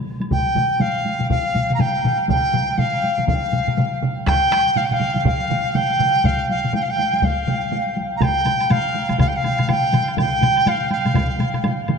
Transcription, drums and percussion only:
0.21 taiko high medium
0.21 high woodblock soft
0.31 taiko medium
0.31 taiko low-mid medium
0.31 taiko mid medium
0.31 taiko high medium
0.45 taiko high soft
0.55 taiko low-mid medium
0.55 taiko mid medium
0.55 taiko high soft
0.70 taiko high soft
0.80 taiko low-mid medium
0.80 taiko mid medium
0.80 taiko high medium
0.95 taiko high soft
1.05 taiko high soft
1.20 taiko low-mid medium
1.20 taiko mid medium
1.20 taiko high soft
1.30 taiko medium
1.30 taiko low-mid medium
1.30 taiko mid medium
1.30 taiko high medium
1.45 taiko high soft
1.54 taiko low-mid medium
1.54 taiko mid medium
1.54 taiko high soft
1.69 taiko low-mid medium
1.69 taiko mid medium
1.69 taiko high soft
1.79 taiko low-mid medium
1.79 taiko mid medium
1.79 taiko high medium
1.94 taiko high soft
2.03 taiko low-mid medium
2.03 taiko mid medium
2.03 taiko high soft
2.18 taiko high soft
2.28 taiko medium
2.28 taiko low-mid medium
2.28 taiko mid medium
2.28 taiko high medium
2.43 taiko high soft
2.53 taiko low-mid medium
2.53 taiko mid medium
2.53 taiko high soft
2.68 taiko high soft
2.78 taiko low-mid medium
2.78 taiko mid medium
2.78 taiko high medium
2.93 taiko high soft
3.02 taiko high soft
3.17 taiko low-mid medium
3.17 taiko mid medium
3.17 taiko high soft
3.27 taiko loud
3.27 taiko low-mid medium
3.27 taiko mid medium
3.27 taiko high medium
3.42 taiko high soft
3.52 taiko low-mid medium
3.52 taiko mid medium
3.52 taiko high soft
3.67 taiko low-mid medium
3.67 taiko mid medium
3.67 taiko high soft
3.77 taiko low-mid medium
3.77 taiko mid medium
3.77 taiko high medium
3.92 taiko high soft
4.02 taiko low-mid medium
4.02 taiko mid medium
4.02 taiko high soft
4.17 taiko high soft
4.26 taiko rim medium
4.26 taiko loud
4.26 taiko high medium
4.41 taiko high soft
4.51 taiko rim medium
4.51 taiko high soft
4.66 taiko high soft
4.76 taiko low-mid medium
4.76 taiko mid medium
4.76 taiko high medium
4.91 taiko low-mid medium
4.91 taiko mid medium
4.91 taiko high soft
5.01 taiko low-mid medium
5.01 taiko mid medium
5.01 taiko high soft
5.15 taiko low-mid medium
5.15 taiko mid medium
5.15 taiko high soft
5.25 taiko loud
5.25 taiko low-mid medium
5.25 taiko mid medium
5.25 taiko high medium
5.40 taiko high soft
5.50 taiko low-mid medium
5.50 taiko mid medium
5.50 taiko high soft
5.65 taiko high soft
5.75 taiko low-mid medium
5.75 taiko mid medium
5.75 taiko high medium
5.89 taiko high soft
5.99 taiko low-mid medium
5.99 taiko mid medium
5.99 taiko high soft
6.14 taiko high soft
6.24 taiko loud
6.24 taiko low-mid medium
6.24 taiko mid medium
6.24 taiko high medium
6.39 taiko high soft
6.49 taiko high soft
6.64 taiko low-mid medium
6.64 taiko mid medium
6.64 taiko high soft
6.73 taiko low-mid medium
6.73 taiko mid medium
6.73 taiko high medium
6.89 taiko high soft
6.98 taiko high soft
7.13 taiko high soft
7.22 taiko loud
7.22 taiko high medium
7.38 taiko high soft
7.47 taiko low-mid medium
7.47 taiko mid medium
7.47 taiko high medium
7.62 taiko high soft
7.72 taiko high medium
7.87 taiko high soft
7.96 taiko high soft
8.11 taiko high soft
8.21 taiko medium
8.21 taiko low-mid medium
8.21 taiko mid medium
8.21 taiko high medium
8.21 high woodblock medium
8.36 taiko high soft
8.45 taiko low-mid medium
8.45 taiko mid medium
8.45 taiko high medium
8.45 high woodblock soft
8.60 taiko high soft
8.60 high woodblock soft
8.70 taiko low-mid medium
8.70 taiko mid medium
8.70 taiko high medium
8.70 high woodblock medium
8.85 taiko high soft
8.94 taiko high medium
9.09 taiko low-mid medium
9.09 taiko mid medium
9.09 taiko high soft
9.09 high woodblock soft
9.19 taiko loud
9.19 taiko low-mid loud
9.19 taiko mid medium
9.19 taiko high medium
9.19 high woodblock medium
9.33 taiko high soft
9.43 taiko low-mid medium
9.43 taiko mid medium
9.43 taiko high medium
9.43 high woodblock soft
9.58 taiko low-mid medium
9.58 taiko mid medium
9.58 taiko high soft
9.58 high woodblock soft
9.68 taiko low-mid medium
9.68 taiko mid medium
9.68 taiko high medium
9.68 high woodblock medium
9.83 taiko high soft
9.92 taiko low-mid medium
9.92 taiko mid medium
9.92 taiko high soft
9.92 high woodblock soft
10.07 taiko high soft
10.07 high woodblock soft
10.17 taiko loud
10.17 taiko low-mid medium
10.17 taiko mid medium
10.17 taiko high medium
10.17 high woodblock medium
10.32 taiko high soft
10.42 taiko low-mid medium
10.42 taiko mid medium
10.42 taiko high medium
10.42 high woodblock soft
10.56 taiko high soft
10.56 high woodblock soft
10.66 taiko low-mid medium
10.66 taiko mid medium
10.66 taiko high medium
10.66 high woodblock medium
10.81 taiko high soft
10.91 taiko high medium
10.91 high woodblock soft
11.05 taiko low-mid medium
11.05 taiko mid medium
11.05 taiko high medium
11.05 high woodblock soft
11.14 taiko loud
11.14 taiko low-mid loud
11.14 taiko mid loud
11.14 taiko high medium
11.14 high woodblock medium
11.30 taiko high soft
11.39 taiko low-mid medium
11.39 taiko mid medium
11.39 taiko high medium
11.39 high woodblock soft
11.54 taiko low-mid medium
11.54 taiko mid medium
11.54 taiko high soft
11.54 high woodblock soft
11.64 taiko low-mid medium
11.64 taiko mid loud
11.64 taiko high medium
11.64 high woodblock medium
11.79 taiko high soft
11.88 taiko low-mid loud
11.88 taiko mid loud
11.88 taiko high medium
11.88 high woodblock soft

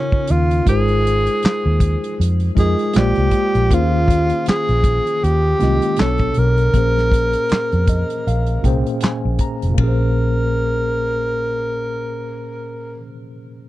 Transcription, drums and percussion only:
0.12 kick medium
0.27 closed hi-hat medium
0.51 closed hi-hat soft
0.67 kick medium
0.67 closed hi-hat medium
0.88 closed hi-hat soft
1.07 closed hi-hat medium
1.27 closed hi-hat soft
1.43 snare medium
1.43 clap medium
1.43 closed hi-hat medium
1.80 kick medium
1.80 closed hi-hat medium
2.04 closed hi-hat soft
2.21 closed hi-hat medium
2.40 closed hi-hat soft
2.57 kick medium
2.57 closed hi-hat medium
2.79 closed hi-hat soft
2.93 snare medium
2.93 clap medium
2.93 closed hi-hat medium
3.15 closed hi-hat soft
3.31 kick medium
3.31 closed hi-hat medium
3.55 closed hi-hat soft
3.71 kick medium
3.71 closed hi-hat medium
4.08 kick medium
4.08 closed hi-hat medium
4.30 closed hi-hat soft
4.46 snare medium
4.46 clap medium
4.46 closed hi-hat medium
4.69 closed hi-hat soft
4.84 kick medium
4.84 closed hi-hat medium
5.07 closed hi-hat soft
5.24 closed hi-hat medium
5.60 snare soft
5.60 closed hi-hat medium
5.82 closed hi-hat soft
5.96 snare medium
5.96 clap medium
5.96 closed hi-hat medium
6.18 kick medium
6.18 closed hi-hat soft
6.34 closed hi-hat medium
6.58 closed hi-hat soft
6.74 kick medium
6.74 closed hi-hat medium
6.98 snare soft
7.12 kick medium
7.12 closed hi-hat medium
7.33 closed hi-hat soft
7.49 snare medium
7.49 clap medium
7.49 closed hi-hat medium
7.72 closed hi-hat soft
7.87 kick medium
7.87 closed hi-hat medium
8.10 closed hi-hat soft
8.28 closed hi-hat medium
8.46 closed hi-hat soft
8.64 kick medium
8.64 closed hi-hat soft
8.86 closed hi-hat soft
9.01 snare medium
9.01 clap medium
9.01 closed hi-hat medium
9.39 kick medium
9.39 closed hi-hat medium
9.62 closed hi-hat soft
9.78 kick medium
9.78 ride bell medium

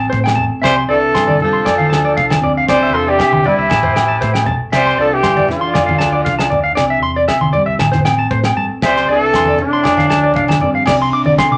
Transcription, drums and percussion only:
0.13 kick medium
0.26 snare medium
0.26 low agogo medium
0.37 low conga medium
0.63 kick medium
0.63 snare medium
0.63 low agogo medium
1.15 kick medium
1.15 snare medium
1.15 low agogo medium
1.28 high conga medium
1.40 low conga medium
1.66 kick medium
1.66 snare medium
1.66 low agogo medium
1.79 high conga medium
1.93 snare medium
1.93 low agogo medium
2.18 kick medium
2.30 snare medium
2.30 high conga medium
2.30 low agogo medium
2.42 low conga medium
2.69 kick medium
2.69 snare medium
2.69 low agogo medium
3.19 kick medium
3.19 snare medium
3.19 low agogo medium
3.33 high conga medium
3.44 low conga medium
3.70 kick medium
3.70 snare medium
3.70 high conga medium
3.70 low agogo medium
3.83 high conga medium
3.83 low conga medium
3.96 snare medium
3.96 low agogo medium
4.22 kick medium
4.22 snare soft
4.35 snare medium
4.35 low agogo medium
4.46 low conga medium
4.73 kick medium
4.73 snare medium
4.73 low agogo medium
5.23 kick medium
5.23 snare medium
5.23 low agogo medium
5.37 high conga medium
5.49 snare soft
5.49 low conga medium
5.75 kick medium
5.75 snare medium
5.75 high conga medium
5.75 low agogo medium
5.89 high conga medium
5.89 low conga medium
6.00 snare medium
6.00 low agogo medium
6.25 kick medium
6.25 snare soft
6.39 snare medium
6.39 low agogo medium
6.52 low conga medium
6.77 kick medium
6.77 snare medium
6.77 low agogo medium
7.28 kick medium
7.28 snare medium
7.28 low agogo medium
7.41 high conga medium
7.54 low conga medium
7.79 kick medium
7.79 snare medium
7.79 high conga medium
7.79 low agogo medium
7.93 snare soft
7.93 high conga medium
7.93 low conga medium
8.05 snare medium
8.05 low agogo medium
8.31 kick medium
8.44 snare medium
8.44 low agogo medium
8.82 kick medium
8.82 snare medium
8.82 low agogo medium
8.96 snare soft
9.33 kick medium
9.33 snare medium
9.33 low agogo medium
9.46 high conga medium
9.59 low conga medium
9.84 kick medium
9.84 snare medium
9.84 low agogo medium
9.97 snare soft
9.97 high conga medium
9.97 low conga medium
10.10 snare medium
10.10 low agogo medium
10.34 kick medium
10.34 high conga medium
10.48 snare medium
10.48 high conga medium
10.48 low agogo medium
10.60 low conga medium
10.86 kick medium
10.86 snare medium
10.86 crash medium
10.86 low agogo medium
11.25 high conga medium
11.38 kick medium
11.38 snare medium
11.38 low agogo medium

